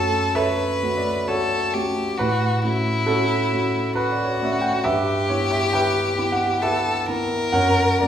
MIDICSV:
0, 0, Header, 1, 3, 480
1, 0, Start_track
1, 0, Tempo, 928793
1, 1128, Time_signature, 3, 2, 24, 8
1, 1128, Tempo, 888889
1, 4008, Tempo, 983607
1, 4281, End_track
2, 0, Start_track
2, 0, Title_t, "Violin"
2, 0, Program_c, 0, 40
2, 0, Note_on_c, 0, 69, 75
2, 181, Note_on_c, 0, 71, 65
2, 189, Note_off_c, 0, 69, 0
2, 660, Note_on_c, 0, 69, 69
2, 667, Note_off_c, 0, 71, 0
2, 896, Note_on_c, 0, 67, 69
2, 904, Note_off_c, 0, 69, 0
2, 1124, Note_on_c, 0, 66, 67
2, 1132, Note_off_c, 0, 67, 0
2, 1366, Note_on_c, 0, 64, 70
2, 1374, Note_off_c, 0, 66, 0
2, 2084, Note_off_c, 0, 64, 0
2, 2087, Note_on_c, 0, 66, 72
2, 2564, Note_on_c, 0, 67, 79
2, 2572, Note_off_c, 0, 66, 0
2, 3523, Note_on_c, 0, 69, 71
2, 3531, Note_off_c, 0, 67, 0
2, 3761, Note_on_c, 0, 70, 81
2, 3769, Note_off_c, 0, 69, 0
2, 4281, Note_off_c, 0, 70, 0
2, 4281, End_track
3, 0, Start_track
3, 0, Title_t, "Grand piano"
3, 0, Program_c, 1, 0
3, 0, Control_c, 1, 64, 127
3, 0, Note_on_c, 1, 42, 57
3, 0, Note_on_c, 1, 57, 37
3, 0, Note_on_c, 1, 61, 38
3, 0, Note_on_c, 1, 66, 39
3, 0, Note_on_c, 1, 69, 74
3, 0, Note_on_c, 1, 73, 85
3, 180, Note_off_c, 1, 69, 0
3, 181, Note_on_c, 1, 76, 94
3, 187, Note_on_c, 1, 69, 73
3, 188, Note_off_c, 1, 73, 0
3, 188, Note_on_c, 1, 73, 75
3, 404, Note_off_c, 1, 57, 0
3, 404, Note_off_c, 1, 61, 0
3, 406, Note_off_c, 1, 66, 0
3, 427, Note_on_c, 1, 57, 42
3, 430, Note_on_c, 1, 66, 42
3, 431, Note_on_c, 1, 61, 40
3, 483, Note_off_c, 1, 69, 0
3, 484, Note_off_c, 1, 73, 0
3, 501, Note_off_c, 1, 76, 0
3, 502, Note_on_c, 1, 74, 66
3, 657, Note_off_c, 1, 66, 0
3, 659, Note_off_c, 1, 74, 0
3, 659, Note_on_c, 1, 73, 80
3, 665, Note_on_c, 1, 66, 58
3, 665, Note_on_c, 1, 69, 59
3, 876, Note_off_c, 1, 57, 0
3, 878, Note_off_c, 1, 61, 0
3, 902, Note_off_c, 1, 66, 0
3, 902, Note_on_c, 1, 57, 39
3, 907, Note_on_c, 1, 61, 37
3, 910, Note_on_c, 1, 66, 43
3, 1111, Note_off_c, 1, 57, 0
3, 1111, Note_off_c, 1, 69, 0
3, 1114, Note_off_c, 1, 61, 0
3, 1115, Note_off_c, 1, 66, 0
3, 1129, Note_off_c, 1, 73, 0
3, 1132, Note_on_c, 1, 71, 87
3, 1136, Control_c, 1, 64, 0
3, 1138, Note_off_c, 1, 42, 0
3, 1139, Note_on_c, 1, 45, 57
3, 1236, Control_c, 1, 64, 127
3, 1366, Note_off_c, 1, 45, 0
3, 1374, Note_on_c, 1, 57, 37
3, 1374, Note_on_c, 1, 61, 37
3, 1378, Note_on_c, 1, 66, 42
3, 1602, Note_off_c, 1, 61, 0
3, 1602, Note_off_c, 1, 66, 0
3, 1605, Note_on_c, 1, 69, 83
3, 1610, Note_off_c, 1, 71, 0
3, 1610, Note_on_c, 1, 61, 62
3, 1610, Note_on_c, 1, 66, 61
3, 1831, Note_off_c, 1, 57, 0
3, 1849, Note_off_c, 1, 61, 0
3, 1851, Note_off_c, 1, 66, 0
3, 1853, Note_on_c, 1, 57, 38
3, 1858, Note_on_c, 1, 61, 39
3, 1859, Note_on_c, 1, 66, 45
3, 2085, Note_on_c, 1, 71, 88
3, 2088, Note_off_c, 1, 69, 0
3, 2171, Note_on_c, 1, 74, 59
3, 2174, Note_off_c, 1, 71, 0
3, 2240, Note_off_c, 1, 74, 0
3, 2240, Note_on_c, 1, 73, 66
3, 2294, Note_off_c, 1, 73, 0
3, 2295, Note_on_c, 1, 74, 65
3, 2308, Note_off_c, 1, 57, 0
3, 2310, Note_off_c, 1, 61, 0
3, 2311, Note_off_c, 1, 66, 0
3, 2333, Note_on_c, 1, 57, 39
3, 2334, Note_on_c, 1, 66, 41
3, 2335, Note_on_c, 1, 61, 41
3, 2341, Note_off_c, 1, 74, 0
3, 2343, Note_on_c, 1, 76, 69
3, 2389, Note_off_c, 1, 76, 0
3, 2390, Note_on_c, 1, 78, 68
3, 2441, Note_on_c, 1, 79, 69
3, 2442, Note_off_c, 1, 78, 0
3, 2501, Note_off_c, 1, 79, 0
3, 2502, Note_on_c, 1, 78, 59
3, 2548, Note_off_c, 1, 57, 0
3, 2549, Note_off_c, 1, 61, 0
3, 2549, Note_off_c, 1, 66, 0
3, 2563, Note_on_c, 1, 76, 99
3, 2567, Note_off_c, 1, 78, 0
3, 2568, Note_on_c, 1, 67, 70
3, 2569, Note_on_c, 1, 43, 53
3, 2569, Note_on_c, 1, 71, 70
3, 2577, Control_c, 1, 64, 0
3, 2662, Control_c, 1, 64, 127
3, 2791, Note_off_c, 1, 67, 0
3, 2791, Note_off_c, 1, 71, 0
3, 2801, Note_off_c, 1, 43, 0
3, 2805, Note_off_c, 1, 76, 0
3, 2805, Note_on_c, 1, 73, 78
3, 2811, Note_on_c, 1, 59, 39
3, 2813, Note_on_c, 1, 64, 40
3, 2923, Note_on_c, 1, 76, 78
3, 2925, Note_off_c, 1, 73, 0
3, 3044, Note_off_c, 1, 76, 0
3, 3045, Note_on_c, 1, 79, 96
3, 3052, Note_on_c, 1, 71, 74
3, 3052, Note_on_c, 1, 76, 68
3, 3268, Note_off_c, 1, 59, 0
3, 3269, Note_off_c, 1, 64, 0
3, 3288, Note_on_c, 1, 59, 41
3, 3289, Note_on_c, 1, 64, 44
3, 3349, Note_off_c, 1, 71, 0
3, 3349, Note_off_c, 1, 76, 0
3, 3363, Note_on_c, 1, 78, 84
3, 3367, Note_off_c, 1, 79, 0
3, 3524, Note_on_c, 1, 76, 78
3, 3525, Note_off_c, 1, 78, 0
3, 3530, Note_on_c, 1, 67, 62
3, 3532, Note_on_c, 1, 71, 61
3, 3743, Note_off_c, 1, 59, 0
3, 3744, Note_off_c, 1, 64, 0
3, 3775, Note_on_c, 1, 64, 45
3, 3776, Note_on_c, 1, 59, 42
3, 3988, Note_off_c, 1, 67, 0
3, 3989, Note_off_c, 1, 71, 0
3, 3992, Note_off_c, 1, 59, 0
3, 3992, Note_off_c, 1, 64, 0
3, 4007, Note_off_c, 1, 76, 0
3, 4012, Note_on_c, 1, 78, 92
3, 4016, Note_on_c, 1, 42, 58
3, 4018, Control_c, 1, 64, 0
3, 4018, Note_on_c, 1, 70, 73
3, 4018, Note_on_c, 1, 73, 67
3, 4110, Control_c, 1, 64, 127
3, 4235, Note_off_c, 1, 70, 0
3, 4235, Note_off_c, 1, 73, 0
3, 4243, Note_off_c, 1, 42, 0
3, 4248, Note_on_c, 1, 74, 74
3, 4249, Note_off_c, 1, 78, 0
3, 4252, Note_on_c, 1, 54, 38
3, 4254, Note_on_c, 1, 58, 38
3, 4255, Note_on_c, 1, 61, 41
3, 4281, Note_off_c, 1, 54, 0
3, 4281, Note_off_c, 1, 58, 0
3, 4281, Note_off_c, 1, 61, 0
3, 4281, Note_off_c, 1, 74, 0
3, 4281, End_track
0, 0, End_of_file